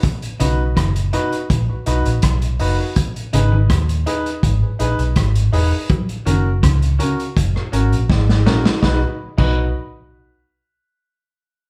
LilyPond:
<<
  \new Staff \with { instrumentName = "Grand piano" } { \time 4/4 \key b \major \tempo 4 = 82 r8 <dis' fis' b'>16 r8. <dis' fis' b'>16 r8 <fis' b'>16 <dis' fis' b'>16 r8. <dis' fis' b'>16 <fis' b'>16 | r8 <dis' gis' b'>16 r8. <dis' gis' b'>16 r8 <gis' b'>16 <dis' gis' b'>16 r8. <dis' gis' b'>16 <gis' b'>16 | r8 <cis' fis' ais'>16 r8. <cis' fis' ais'>16 r8 <fis' ais'>16 <cis' fis' ais'>16 r8. <cis' fis' ais'>16 <fis' ais'>16 | <dis' fis' b'>16 r8 <dis' fis' b'>8 r2 r8. | }
  \new Staff \with { instrumentName = "Clean electric guitar" } { \clef bass \time 4/4 \key b \major b,16 r16 cis16 r16 dis16 r16 b,16 r2 r16 | b,16 r16 cis16 dis16 r2. | fis16 r16 dis16 r16 cis16 r16 cis16 r2 r16 | b,16 r8 b,8 r2 r8. | }
  \new Staff \with { instrumentName = "Fingered electric bass" } { \clef bass \time 4/4 \key b \major r8 b,,8 fis,,8 r8 ais,,16 r16 b,,16 ais,,16 b,,8 fis,,16 r16 | r8 gis,,8 dis,8 r8 gis,,16 r16 ais,,16 b,,16 gis,,8 e,,16 r16 | r8 fis,,8 cis,8 r8 fis,,16 r16 gis,,16 ais,,16 gis,,8 ais,,16 r16 | b,,16 r8 b,,8 r2 r8. | }
  \new DrumStaff \with { instrumentName = "Drums" } \drummode { \time 4/4 <hh bd>16 hh16 hh8 <hh bd ss>16 hh16 hh16 hh16 <hh bd>8 hh16 hh16 <hh bd ss>16 hh16 hho8 | <hh bd>16 hh16 hh8 <hh bd ss>16 hh16 hh16 hh16 <hh bd>8 hh16 hh16 <hh bd ss>16 hh16 hho8 | <hh bd>16 hh16 hh8 <hh bd ss>16 hh16 hh16 hh16 <hh bd>16 ss16 hh16 hh16 <bd sn>16 sn16 sn16 sn16 | <bd sn>8. <cymc bd>16 r4 r4 r4 | }
>>